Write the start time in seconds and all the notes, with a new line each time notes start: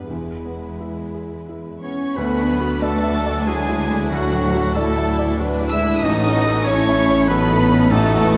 Already playing: G2 B3 D4 G4 B4
0.09 E1 E2 G#3 E4
0.45 B3
0.81 E4
1.14 G#4
1.49 E4
1.81 B3 C#4 C#5 C#6
2.15 D2 A3 B3 D4 F#4 B4 B5
2.40 D4
2.49 F#3
2.60 F#4
2.81 A3 F#4 A4 B4 D5 A5
3.03 E5
3.16 A4
3.26 D5
3.46 F#3 G#3 E4 F#4 G#4 G#5
3.69 E4
3.89 D4
4.10 D2 F#3 F#4 A4 F#5
4.32 A2
4.54 F#4
4.74 F#3 A3 D4 E4 A4 D5 A5
4.98 E5
5.06 E4
5.19 D5
5.39 F#3 D4 F#4 B4
5.61 E4
5.69 G#3 E4 E5 E6
5.83 D4
6.01 A1 A3 C#4 D#4 F#4 A4 D#5 D#6
6.26 C#4
6.35 B3
6.46 A4
6.64 A3 C#4 E4 A4 C#5 C#6
6.89 E5
6.97 A3
7.10 C#5
7.28 F#3 B3 D#4 A4 B4 B5
7.51 E4
7.61 A3
7.71 C#4
7.90 A1 A3 F#4 A4 A5
8.14 E2
8.22 B3